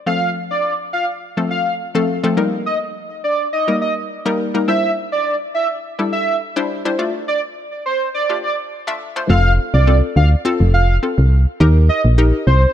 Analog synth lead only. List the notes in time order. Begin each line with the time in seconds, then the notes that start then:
0.07 F5
0.51 D5
0.93 F5
1.51 F5
2.66 D#5
3.24 D5
3.53 D#5
3.82 D#5
4.68 E5
5.12 D5
5.54 E5
6.12 E5
7.28 D5
7.86 C5
8.14 D5
8.43 D5
9.30 F5
9.74 D5
10.16 F5
10.74 F5
11.89 D#5
12.47 C5